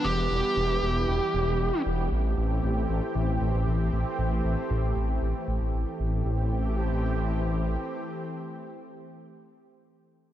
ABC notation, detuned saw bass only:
X:1
M:4/4
L:1/16
Q:1/4=116
K:Am
V:1 name="Detuned saw bass" clef=bass
E,,,2 E,,, z E,,,2 E,,,2 E,,, z E,,, E,,, E,,, z E,,,2 | A,,,2 A,,,2 A,,,2 A,,, z A,,,2 A,,, A,,, A,,,2 A,,, z | A,,,2 A,,, z A,,,2 A,,,2 A,,, z A,,, A,,, A,,, z A,,,2 | A,,,12 z4 |
z16 |]